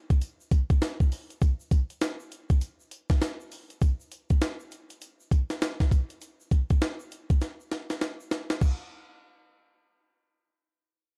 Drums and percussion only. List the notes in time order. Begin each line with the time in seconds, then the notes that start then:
0.10 kick, closed hi-hat, shaker
0.21 closed hi-hat, tambourine, shaker
0.40 shaker
0.51 kick, closed hi-hat, tambourine
0.70 kick, closed hi-hat, shaker
0.82 snare, closed hi-hat, tambourine, shaker
1.00 kick, shaker
1.12 open hi-hat, tambourine, shaker
1.30 closed hi-hat, shaker
1.42 kick, closed hi-hat, tambourine, shaker
1.60 shaker
1.71 kick, closed hi-hat, tambourine, shaker
1.90 closed hi-hat, shaker
2.01 snare, closed hi-hat, tambourine, shaker
2.20 shaker
2.32 closed hi-hat, shaker
2.50 kick, closed hi-hat, shaker
2.61 closed hi-hat, tambourine, shaker
2.80 shaker
2.91 closed hi-hat, tambourine
3.10 kick, snare, closed hi-hat, shaker
3.21 snare, closed hi-hat, tambourine, shaker
3.40 shaker
3.52 open hi-hat, tambourine, shaker
3.70 closed hi-hat, shaker
3.82 kick, closed hi-hat, tambourine, shaker
4.00 shaker
4.11 closed hi-hat, tambourine, shaker
4.30 kick, closed hi-hat, shaker
4.41 snare, closed hi-hat, tambourine, shaker
4.60 shaker
4.71 closed hi-hat, shaker
4.90 closed hi-hat, shaker
5.01 closed hi-hat, tambourine, shaker
5.20 shaker
5.31 kick, closed hi-hat, tambourine
5.50 snare, closed hi-hat, shaker
5.62 snare, closed hi-hat, tambourine, shaker
5.80 kick, snare, shaker
5.91 kick, closed hi-hat, tambourine, shaker
6.10 closed hi-hat, shaker
6.21 closed hi-hat, shaker
6.40 shaker
6.51 kick, closed hi-hat, shaker
6.70 kick, closed hi-hat, shaker
6.81 snare, closed hi-hat, shaker
7.00 shaker
7.11 closed hi-hat, shaker
7.30 kick, closed hi-hat, shaker
7.41 snare, closed hi-hat, shaker
7.60 shaker
7.71 snare, closed hi-hat
7.90 snare, closed hi-hat, shaker
8.01 snare, closed hi-hat, shaker
8.20 shaker
8.31 snare, closed hi-hat, shaker
8.50 snare, closed hi-hat, shaker
8.61 kick, crash, shaker